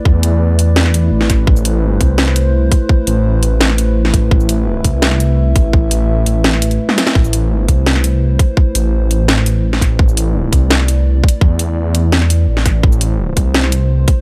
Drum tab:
HH |----x-------x-------x-------x---|----x-------x-------x-------x---|----x-------x-------x-------x---|----x-------x-------x-------x---|
SH |--------------------------------|--x-----------------------------|--------------------------------|--x-----------------------------|
SD |----------------o-o-------o-o---|----------------o-o-------------|----------------o-o-------o-----|----------------o-o-------------|
T1 |--------------------------------|--------------------------------|--------------------------------|--------------------------------|
BD |o---------------------------o---|o-----------o---------------o---|o---------------------------o---|o-----------o---------------o---|

HH |----x-------x-------x-x-----x---|----x-------x-------x-------x---|----x-------x-------x-------x---|----x-------x-------x--------x--|
SH |------------------------------x-|--x-----------------------------|--------------------------------|--x-----------------------------|
SD |----------------o-o-------o-o-o-|----------------o-o-------------|----------------o-o-------o-o---|----------------o-o-------------|
T1 |--------------------------o-----|--------------------------------|--------------------------------|--------------------------------|
BD |o-------------------------------|o-----------o---------------o---|o---------------------------o---|o-----------o---------------o---|

HH |----x-------x-------x-------x---|----x-------x-------x-------x---|
SH |--------------------------------|--x-----------------------------|
SD |----------------o-o-------o-o---|----------------o-o-------------|
T1 |--------------------------------|--------------------------------|
BD |o---------------------------o---|o-----------o---------------o---|